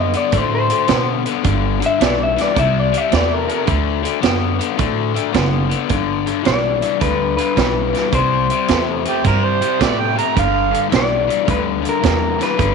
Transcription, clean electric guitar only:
0.00 D#5
0.17 D5
0.37 C5
0.55 C5
1.86 E5
2.03 D5
2.23 E5
2.41 D5
2.59 E5
2.79 D5
2.98 E5
3.15 D5
3.34 A#4
6.47 D5
7.02 B4
7.37 B4
8.15 C5
10.96 D5
11.51 B4
11.89 A#4
12.43 B4

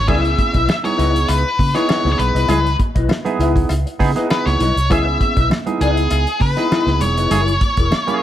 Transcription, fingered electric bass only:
0.08 C#2
0.55 B1
0.99 C#2
1.29 C#2
1.59 C#3
2.05 C#2
2.19 B1
2.35 C2
2.49 C#2
2.96 B1
3.39 C#2
3.70 C#2
4.00 C#3
4.46 C#2
4.61 B1
4.76 C2
4.91 C#2
5.37 B1
5.81 C#2
6.11 C#2
6.41 C#3
6.87 C#2
7.01 E1
7.17 F1
7.31 F#1
7.77 E1

